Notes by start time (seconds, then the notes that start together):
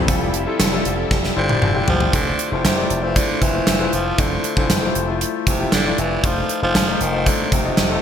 Already playing: F3 G3 C4 E4 F4 G4 A4
0.08 F1 F3 G3 C4 E4 F4 G4 A4 E5, kick, closed hi-hat
0.34 closed hi-hat
0.46 G3 E4 F4 A4
0.60 F1, snare, closed hi-hat
0.72 G3 E4 F4 A4
0.85 F1, closed hi-hat
1.11 F1, kick, snare
1.24 snare
1.36 G1 D3 G3 E4 F4 C5
1.49 high tom
1.62 F1, mid tom
1.74 G3 E4 F4 G4
1.88 G1 F3, floor tom
2.00 floor tom
2.13 F1 D3 A3 E4 F4 C5, kick, closed hi-hat
2.39 closed hi-hat
2.51 F1 C3 A3 E4 F4 C5
2.64 F1 C3, snare, closed hi-hat
2.77 A3 E4 F4 D5
2.90 F1, closed hi-hat
3.02 E3 A3 E4 F4 C5
3.16 D3, kick, closed hi-hat
3.42 F1 E3, kick, closed hi-hat
3.54 A3 E4 F4 C5
3.67 F1, snare, closed hi-hat
3.79 A3 E4 F4 C5
3.93 F1 F3, closed hi-hat
4.18 F1 D3 A3 E4 F4 C5, kick, closed hi-hat
4.44 closed hi-hat
4.56 F1 D3 A3 E4 F4 C5, kick
4.70 F1 C3, snare, closed hi-hat
4.82 A3 E4 F4 C5
4.95 F1, closed hi-hat
5.08 A3 E4 F4 C5
5.21 closed hi-hat
5.47 F1 C3, kick, closed hi-hat
5.59 A3 E4 F4 G4
5.72 F1 D3, snare, closed hi-hat
5.85 A3 E4 F4 D5
5.98 F1 E3, closed hi-hat
6.23 F1 F3 A3 D#4 F4 C5, kick, closed hi-hat
6.49 closed hi-hat
6.62 F1 F3 A3 D#4 F4 C5
6.75 F1, snare, closed hi-hat
6.87 A3 D#4 F4 C5
7.01 F1 D#3, closed hi-hat
7.13 A3 D#4 F4 C5
7.26 D3, kick, closed hi-hat
7.52 F1 C3, kick, closed hi-hat
7.64 A3 D#4 F4 D#5
7.77 F1, snare, closed hi-hat
7.90 A3 D#4 F4 A4